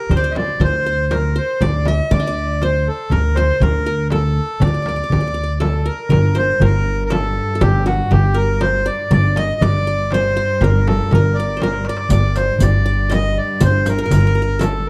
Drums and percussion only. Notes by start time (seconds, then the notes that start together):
0.10 darbuka dum, frame drum
0.35 darbuka tek, frame drum
0.60 darbuka dum, frame drum
1.11 darbuka tek, frame drum
1.61 darbuka dum, frame drum
1.86 darbuka tek, frame drum
2.11 frame drum, darbuka dum
2.62 darbuka tek, frame drum
3.10 darbuka dum, frame drum
3.36 darbuka tek, frame drum
3.60 darbuka dum, frame drum
4.10 darbuka tek, frame drum
4.60 darbuka dum, frame drum
4.86 darbuka tek, frame drum
5.10 darbuka dum, frame drum
5.35 darbuka ka
5.61 darbuka tek, frame drum
6.09 darbuka dum, frame drum
6.36 frame drum
6.60 darbuka dum, frame drum
7.10 darbuka tek, frame drum
7.61 frame drum, darbuka dum
7.86 darbuka tek, frame drum
8.11 frame drum, darbuka dum
8.61 darbuka tek, frame drum
9.11 frame drum, darbuka dum
9.36 darbuka tek, frame drum
9.62 frame drum, darbuka dum
10.11 darbuka tek, frame drum
10.61 darbuka dum, frame drum
10.87 darbuka tek, frame drum
11.11 darbuka dum, frame drum
11.61 darbuka tek, frame drum
11.73 darbuka ka
11.85 darbuka tek
11.97 darbuka ka
12.09 riq, darbuka dum, frame drum
12.36 riq, darbuka tek, frame drum
12.59 riq, darbuka dum, frame drum
13.11 riq, darbuka tek, frame drum
13.60 riq, darbuka dum, frame drum
13.86 riq, darbuka tek, frame drum
14.10 riq, darbuka dum, frame drum
14.61 riq, darbuka tek, frame drum